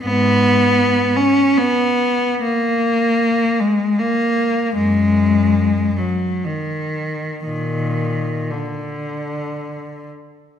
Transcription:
cello
0.02 G#2 B3
1.16 C#4
1.58 B3
2.43 A#3
3.60 G#3
3.99 A#3
4.75 F#2 G#3
5.98 F#3
6.45 D#3
7.45 A#2 D#3
8.51 D3

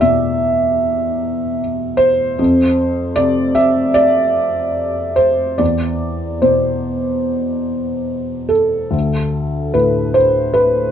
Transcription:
felt piano
Already playing: E2 D5
0.01 B2 E5
1.97 C5
2.39 F2
3.16 C3 D5
3.55 E5
3.94 D5
5.16 C5
5.58 E2 D5
6.42 B2 C5
8.49 A4
8.91 D2
9.74 A2 B4
10.14 C5
10.54 B4

